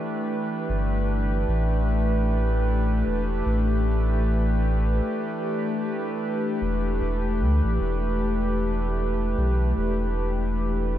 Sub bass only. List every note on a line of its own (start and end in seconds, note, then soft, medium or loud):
0.69 1.45 G1 medium
1.48 3.03 A1 loud
3.06 3.42 E1 medium
3.46 5.01 A1 loud
6.62 7.01 E1 loud
7.01 7.42 E1 medium
7.41 7.61 D2 loud
7.64 7.78 A1 medium
7.80 9.35 E1 loud
9.38 9.73 B1 medium
9.77 10.98 E1 loud